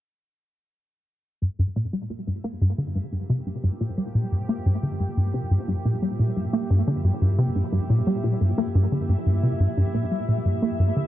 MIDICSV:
0, 0, Header, 1, 4, 480
1, 0, Start_track
1, 0, Tempo, 681818
1, 998, Time_signature, 4, 2, 24, 8
1, 7793, End_track
2, 0, Start_track
2, 0, Title_t, "Synth texture"
2, 0, Program_c, 0, 99
2, 996, Note_on_c, 0, 64, 80
2, 998, Note_on_c, 0, 76, 82
2, 7793, Note_off_c, 0, 64, 0
2, 7793, Note_off_c, 0, 76, 0
2, 7793, End_track
3, 0, Start_track
3, 0, Title_t, "Analog synth pad"
3, 0, Program_c, 1, 89
3, 996, Note_on_c, 1, 53, 73
3, 996, Note_on_c, 1, 67, 79
3, 997, Note_on_c, 1, 58, 68
3, 7793, Note_off_c, 1, 53, 0
3, 7793, Note_off_c, 1, 58, 0
3, 7793, Note_off_c, 1, 67, 0
3, 7793, End_track
4, 0, Start_track
4, 0, Title_t, "Analog synth bass"
4, 0, Program_c, 2, 38
4, 998, Note_on_c, 2, 43, 78
4, 1051, Note_off_c, 2, 43, 0
4, 1118, Note_on_c, 2, 43, 86
4, 1171, Note_off_c, 2, 43, 0
4, 1238, Note_on_c, 2, 46, 94
4, 1326, Note_off_c, 2, 46, 0
4, 1359, Note_on_c, 2, 55, 66
4, 1446, Note_off_c, 2, 55, 0
4, 1479, Note_on_c, 2, 46, 74
4, 1566, Note_off_c, 2, 46, 0
4, 1599, Note_on_c, 2, 43, 70
4, 1686, Note_off_c, 2, 43, 0
4, 1718, Note_on_c, 2, 58, 85
4, 1832, Note_off_c, 2, 58, 0
4, 1838, Note_on_c, 2, 43, 94
4, 1926, Note_off_c, 2, 43, 0
4, 1957, Note_on_c, 2, 50, 72
4, 2072, Note_off_c, 2, 50, 0
4, 2078, Note_on_c, 2, 43, 71
4, 2131, Note_off_c, 2, 43, 0
4, 2198, Note_on_c, 2, 43, 68
4, 2312, Note_off_c, 2, 43, 0
4, 2319, Note_on_c, 2, 48, 95
4, 2406, Note_off_c, 2, 48, 0
4, 2439, Note_on_c, 2, 43, 74
4, 2491, Note_off_c, 2, 43, 0
4, 2559, Note_on_c, 2, 43, 88
4, 2611, Note_off_c, 2, 43, 0
4, 2679, Note_on_c, 2, 46, 91
4, 2766, Note_off_c, 2, 46, 0
4, 2799, Note_on_c, 2, 55, 67
4, 2886, Note_off_c, 2, 55, 0
4, 2919, Note_on_c, 2, 46, 77
4, 3006, Note_off_c, 2, 46, 0
4, 3039, Note_on_c, 2, 43, 64
4, 3126, Note_off_c, 2, 43, 0
4, 3160, Note_on_c, 2, 58, 97
4, 3273, Note_off_c, 2, 58, 0
4, 3279, Note_on_c, 2, 43, 91
4, 3366, Note_off_c, 2, 43, 0
4, 3399, Note_on_c, 2, 50, 76
4, 3513, Note_off_c, 2, 50, 0
4, 3518, Note_on_c, 2, 43, 71
4, 3571, Note_off_c, 2, 43, 0
4, 3639, Note_on_c, 2, 43, 66
4, 3753, Note_off_c, 2, 43, 0
4, 3758, Note_on_c, 2, 48, 95
4, 3846, Note_off_c, 2, 48, 0
4, 3877, Note_on_c, 2, 43, 73
4, 3930, Note_off_c, 2, 43, 0
4, 3998, Note_on_c, 2, 43, 92
4, 4051, Note_off_c, 2, 43, 0
4, 4119, Note_on_c, 2, 46, 91
4, 4206, Note_off_c, 2, 46, 0
4, 4239, Note_on_c, 2, 55, 71
4, 4326, Note_off_c, 2, 55, 0
4, 4359, Note_on_c, 2, 46, 74
4, 4446, Note_off_c, 2, 46, 0
4, 4479, Note_on_c, 2, 43, 68
4, 4566, Note_off_c, 2, 43, 0
4, 4598, Note_on_c, 2, 58, 91
4, 4712, Note_off_c, 2, 58, 0
4, 4718, Note_on_c, 2, 43, 90
4, 4806, Note_off_c, 2, 43, 0
4, 4839, Note_on_c, 2, 50, 78
4, 4953, Note_off_c, 2, 50, 0
4, 4957, Note_on_c, 2, 43, 70
4, 5010, Note_off_c, 2, 43, 0
4, 5079, Note_on_c, 2, 43, 73
4, 5193, Note_off_c, 2, 43, 0
4, 5197, Note_on_c, 2, 48, 92
4, 5285, Note_off_c, 2, 48, 0
4, 5318, Note_on_c, 2, 43, 72
4, 5371, Note_off_c, 2, 43, 0
4, 5437, Note_on_c, 2, 43, 91
4, 5490, Note_off_c, 2, 43, 0
4, 5559, Note_on_c, 2, 46, 88
4, 5646, Note_off_c, 2, 46, 0
4, 5679, Note_on_c, 2, 55, 74
4, 5766, Note_off_c, 2, 55, 0
4, 5798, Note_on_c, 2, 46, 75
4, 5886, Note_off_c, 2, 46, 0
4, 5920, Note_on_c, 2, 43, 70
4, 6006, Note_off_c, 2, 43, 0
4, 6039, Note_on_c, 2, 58, 91
4, 6153, Note_off_c, 2, 58, 0
4, 6159, Note_on_c, 2, 43, 97
4, 6246, Note_off_c, 2, 43, 0
4, 6279, Note_on_c, 2, 50, 77
4, 6393, Note_off_c, 2, 50, 0
4, 6400, Note_on_c, 2, 43, 69
4, 6451, Note_off_c, 2, 43, 0
4, 6520, Note_on_c, 2, 43, 70
4, 6633, Note_off_c, 2, 43, 0
4, 6639, Note_on_c, 2, 48, 93
4, 6726, Note_off_c, 2, 48, 0
4, 6758, Note_on_c, 2, 43, 78
4, 6811, Note_off_c, 2, 43, 0
4, 6880, Note_on_c, 2, 43, 90
4, 6932, Note_off_c, 2, 43, 0
4, 6999, Note_on_c, 2, 46, 92
4, 7086, Note_off_c, 2, 46, 0
4, 7119, Note_on_c, 2, 55, 66
4, 7206, Note_off_c, 2, 55, 0
4, 7238, Note_on_c, 2, 46, 76
4, 7326, Note_off_c, 2, 46, 0
4, 7358, Note_on_c, 2, 43, 70
4, 7446, Note_off_c, 2, 43, 0
4, 7478, Note_on_c, 2, 58, 89
4, 7592, Note_off_c, 2, 58, 0
4, 7598, Note_on_c, 2, 43, 91
4, 7686, Note_off_c, 2, 43, 0
4, 7718, Note_on_c, 2, 50, 76
4, 7793, Note_off_c, 2, 50, 0
4, 7793, End_track
0, 0, End_of_file